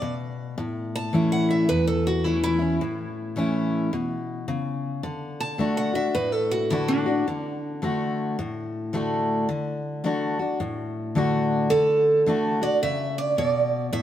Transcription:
steel-string acoustic guitar
Already playing: D5
0.02 B2
0.58 A2
0.95 A5
1.13 E3 A3 C#4 E4
1.32 F#5
1.51 E5
1.69 E2 B4
1.87 A4
2.07 F#4
2.24 E3 A3 C#4 E4
2.44 E4
2.59 C#4 E4
2.81 A2
3.36 E3 A3 C#4 E4
3.93 B2
4.48 C#3
5.03 D3
5.40 A5
5.58 D3 A3 D4 F#4
5.77 F#5
5.93 D4 F#4 E5
6.15 A2 B4
6.32 A4
6.51 F#4
6.70 D3 A3 D4 E4 F#4
6.88 D4
7.06 D4 F#4
7.28 D3
7.82 D3 A3 D4 F#4
8.39 A2
8.93 D3 A3 D4 F#4
9.49 D3
10.04 D3 A3 D4 F#4
10.39 D4 F#4
10.60 A2
11.15 D3 A3 D4 F#4
11.70 D3 A4
12.26 D3 A3 D4 F#4
12.61 D4 F#4 D5
12.83 C#3 E5
13.18 D5
13.38 B2 D5
13.93 A2 E5

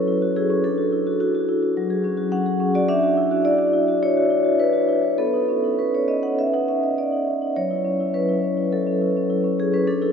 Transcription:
vibraphone
Already playing: F#3 C#4 E4 F#4 A4 B4 C#5
0.08 E4
0.22 F#4
0.36 E4 G#4
0.50 C#4
0.64 D4 A4
0.78 F#4
0.92 E4
1.07 F#4
1.20 E4 F#4
1.35 F#4
1.49 E4
1.63 F#4
1.77 F#3
1.90 G#4
2.04 C#4
2.17 F#4
2.32 C#4 F#5
2.46 G#4
2.60 C#4
2.74 F#4 D5
2.88 D4 E5
3.03 F#4
3.17 E4
3.31 F#4
3.45 E4 D5
3.59 F#4
3.73 E4
3.88 F#4
4.02 E4 C#5
4.17 F#4
4.30 E4
4.44 F#4
4.59 E4 B4
4.73 F#4
4.89 E4
5.03 F#4
5.18 B3 A4
5.34 D#4
5.49 C#4
5.64 D#4
5.79 C#4 B4
5.94 D#4 C#5
6.08 C#4 D#5
6.23 D#4 F#5
6.39 C#4 E5
6.53 D#4 F#5
6.68 C#4 E5
6.83 D#4 D#5
6.98 C#4 D5
7.12 D#4
7.27 C#4
7.42 D#4
7.56 F#3 C#5
7.71 E4
7.85 C#4
8.00 E4
8.14 C#4 B4
8.29 E4
8.43 C#4
8.57 E4
8.72 F#3 A4
8.87 C#4
9.02 E4
9.17 C#4
9.30 E4
9.44 C#4
9.59 E4 G#4
9.73 C#4 B4
9.87 D4 A4
10.02 E4 G#4

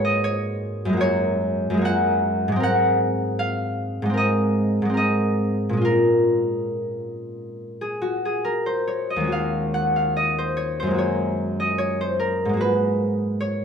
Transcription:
harp
Already playing: G#2 F#3 G#3 A#3 F#4 A#4 B4 C#5
0.05 D#5
0.24 C#5
0.85 F#2 G#3
0.93 A#3
0.97 F#4 C#5
1.70 F#2 G#3
1.77 A#3
1.82 F#4 F#5
2.48 G#2
2.52 G#3
2.56 C4
2.60 A#4 F#5
3.39 F5
4.02 G#2 G#3
4.10 C4
4.14 A#4 D#5
4.82 G#2 G#3
4.90 C4
4.94 A#4 D#5
5.69 A#2 G#3
5.77 C#4
5.81 F4 A#4
7.81 G#4
8.02 F#4
8.25 G#4
8.45 A#4
8.66 C5
8.87 C#5
9.10 D#5
9.16 D#2 G#3
9.24 C#4 F#4
9.32 F5
9.74 F#5
9.96 F5
10.17 D#5
10.38 C5
10.57 C#5
10.80 F#2 C5
10.87 G#3 A#3
10.95 F#4 C#5
11.60 D#5
11.78 C#5
12.01 C5
12.19 A#4
12.45 G#2 G#3
12.53 A#3 F#4
12.61 B4
13.40 C#5

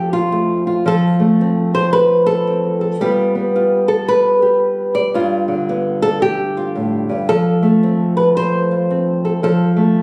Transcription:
nylon-string guitar
Already playing: F2 F3 A3 G4
0.13 F4
0.32 A3
0.67 F4
0.86 F3 A4
1.20 A3
1.41 C4
1.75 C5
1.93 B4
2.26 A4
2.47 C4
2.81 A4
3.01 G3 B3 F4 G4
3.35 B3
3.56 F4
3.88 A4
4.08 B4
4.42 G4
4.95 D5
5.14 G2 F4
5.48 D3
5.69 B3
6.02 A4
6.22 G4
6.57 F4
6.75 A2
7.09 G2
7.29 F3 A4
7.62 A3
7.83 C4
8.17 B4
8.37 C5
8.71 F4
8.91 C4
9.25 A4
9.43 F3 A4
9.76 A3

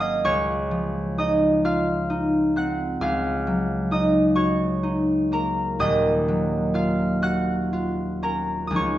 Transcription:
harp
Already playing: G#1 G#2 F#3 A#3 C#4 F#4 F5 F#5 G#5 F6
0.00 D#5 D#6
0.24 C#2 C#5 C#6
0.71 F3
1.18 D#4 D#5 D#6
1.65 F4 F5 F6
2.10 D#4
2.56 C4 F#5 F#6
3.01 C#2 F5 F6
3.47 F#3
3.91 D#4 D#5 D#6
4.36 F#4 C#5 C#6
4.83 D#4
5.32 A#3 A#4 A#5
5.79 D#1 D#2 D#5 D#6
6.28 F#3
6.74 F4 F5 F6
7.22 F#4 F#5 F#6
7.73 F4
8.23 C#4 A#4 A#5
8.67 C#2 D#6
8.72 F3 C#4 D#4
8.76 C#5 C#6

